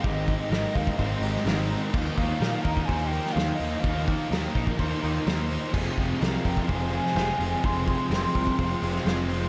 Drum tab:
CC |----------------|x---------------|----------------|x---------------|
HH |o-o-o-o-o-o-o-o-|--o-o-o-o-o-o-o-|o-o-o-o-o-o-o-o-|--o-o-o-o-o-o-o-|
SD |----o------oo---|----o------oo---|----o-------o---|----o------oo---|
BD |o-o---ooo-------|o-o---ooo-------|o-o---ooo-------|o-o---ooo-------|

CC |----------------|
HH |o-o-o-o-o-o-o-o-|
SD |----o------oo---|
BD |o-o---ooo-------|